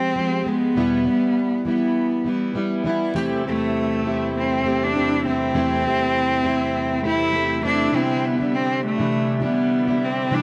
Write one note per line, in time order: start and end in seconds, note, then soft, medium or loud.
0.00 0.14 F3 soft
0.00 0.15 G#3 medium
0.00 0.16 C4 medium
0.00 0.49 C4 loud
0.00 0.18 G4 medium
0.15 0.44 F3 medium
0.15 0.45 G#3 medium
0.15 0.47 C4 medium
0.15 0.47 G4 medium
0.45 0.76 F3 medium
0.45 0.76 G#3 medium
0.45 1.67 B3 loud
0.45 0.77 G4 medium
0.75 1.06 E2 medium
0.75 1.06 B2 medium
0.75 1.04 E3 medium
0.75 1.05 G3 medium
0.75 1.06 B3 medium
0.75 1.07 E4 medium
1.05 1.65 E3 medium
1.05 1.66 G3 medium
1.05 1.66 B3 medium
1.05 1.68 E4 medium
1.65 2.24 E3 medium
1.65 2.25 G3 medium
1.65 2.25 B3 medium
1.65 2.53 B3 medium
1.65 2.27 E4 medium
2.24 2.52 E3 medium
2.24 2.54 G3 medium
2.24 2.55 B3 medium
2.24 2.56 E4 medium
2.53 2.83 E3 medium
2.53 2.84 G3 medium
2.53 2.85 B3 medium
2.53 2.86 E4 medium
2.84 3.13 E3 medium
2.84 3.15 G3 medium
2.84 3.15 B3 medium
2.84 3.16 E4 medium
3.14 3.45 E2 medium
3.14 7.89 E2 medium
3.14 7.89 C3 medium
3.14 3.45 E3 medium
3.14 7.89 E3 medium
3.14 7.89 G3 medium
3.14 3.43 A3 medium
3.14 7.89 A3 medium
3.14 3.44 C4 medium
3.14 7.89 E4 medium
3.14 3.46 E4 medium
3.14 3.45 G4 loud
3.44 4.03 A3 medium
3.44 4.32 A3 loud
3.44 4.04 C4 medium
3.44 4.07 E4 medium
3.44 4.06 G4 medium
4.04 4.62 A3 medium
4.04 4.64 C4 medium
4.04 4.66 E4 medium
4.04 4.65 G4 medium
4.38 4.85 C4 loud
4.63 4.93 A3 medium
4.63 4.94 C4 medium
4.63 4.96 E4 medium
4.63 4.95 G4 medium
4.83 5.26 D4 loud
4.94 5.22 A3 medium
4.94 5.24 C4 medium
4.94 5.26 E4 medium
4.94 5.25 G4 medium
5.24 5.54 A3 medium
5.24 5.54 C4 medium
5.24 7.00 C4 loud
5.24 5.55 E4 medium
5.24 5.54 G4 medium
5.54 5.84 E2 medium
5.54 5.84 E3 medium
5.54 5.83 A3 medium
5.54 5.83 C4 medium
5.54 5.85 E4 medium
5.54 5.84 G4 medium
5.84 6.42 A3 medium
5.84 6.44 C4 medium
5.84 6.46 E4 medium
5.84 6.45 G4 medium
6.43 7.02 A3 medium
6.43 7.04 C4 medium
6.43 7.05 E4 medium
6.43 7.05 G4 medium
7.03 7.32 A3 medium
7.03 7.33 C4 medium
7.03 7.35 E4 medium
7.03 7.61 E4 loud
7.03 7.34 G4 medium
7.33 7.61 A3 medium
7.33 7.62 C4 medium
7.33 7.64 E4 medium
7.33 7.63 G4 medium
7.62 7.92 A3 medium
7.62 7.93 C4 medium
7.62 7.97 D4 loud
7.62 7.93 E4 medium
7.62 7.93 G4 medium
7.92 8.39 C3 medium
7.92 10.42 C3 medium
7.92 10.42 D3 medium
7.92 8.39 E3 medium
7.92 10.42 G3 medium
7.92 8.40 G3 medium
7.92 8.27 C4 loud
7.92 8.39 D4 medium
7.92 10.42 E4 medium
7.92 8.37 E4 medium
8.25 8.56 B3 medium
8.38 8.98 G3 soft
8.38 8.97 D4 soft
8.38 8.97 E4 soft
8.55 8.84 C4 loud
8.85 9.40 A3 loud
8.98 9.43 C3 medium
8.98 9.39 E3 medium
8.98 9.41 G3 medium
8.98 9.42 D4 medium
8.98 9.42 E4 medium
9.40 9.88 E3 medium
9.40 9.88 G3 medium
9.40 10.06 B3 loud
9.40 9.88 D4 medium
9.40 9.86 E4 medium
9.87 10.31 G3 soft
9.87 10.31 D4 soft
9.87 10.31 E4 medium
10.05 10.36 C4 medium
10.31 10.42 C3 medium
10.31 10.42 E3 medium
10.31 10.42 G3 medium
10.31 10.42 D4 medium
10.31 10.42 D4 loud
10.31 10.42 E4 medium